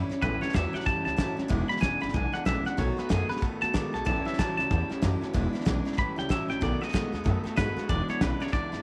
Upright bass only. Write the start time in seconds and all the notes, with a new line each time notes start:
0.11 muted upright bass stroke
0.22 A1
0.42 muted upright bass stroke
0.54 E2
0.74 muted upright bass stroke
0.86 F#2
1.06 C#2
1.38 A1
1.50 E1
1.71 muted upright bass stroke
1.83 E1
2.03 G#1
2.14 B1
2.34 muted upright bass stroke
2.46 A1
2.66 muted upright bass stroke
2.78 B1
2.98 muted upright bass stroke
3.10 F#2
3.30 muted upright bass stroke
3.42 G#2
3.62 D#2
3.75 A1
3.94 B1
4.07 A1
4.26 muted upright bass stroke
4.39 A1
4.58 C#2
4.71 E2
4.91 muted upright bass stroke
5.03 F#2
5.22 muted upright bass stroke
5.35 E1
5.55 muted upright bass stroke
5.66 B1
5.98 A1
6.18 C#2
6.30 G1
6.50 A1
6.62 B1
6.94 B1
7.13 D#2
7.26 F#2
7.45 muted upright bass stroke
7.58 G#2
7.76 muted upright bass stroke
7.90 E1
8.08 muted upright bass stroke
8.21 B1
8.53 C#2
8.72 G#1